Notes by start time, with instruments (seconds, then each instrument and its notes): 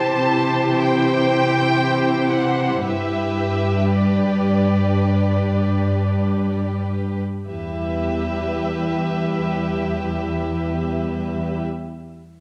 Already playing: cello section C3, viola section E3 E4, violin section G4 C5 A5
0.79 violin section G5
2.32 violin section F#5
2.85 cello section G2, viola section G3, violin section G4 B4 E5
3.93 viola section D4, violin section D5
7.47 cello section E2, viola section G3 E4, violin section G4 B4 E5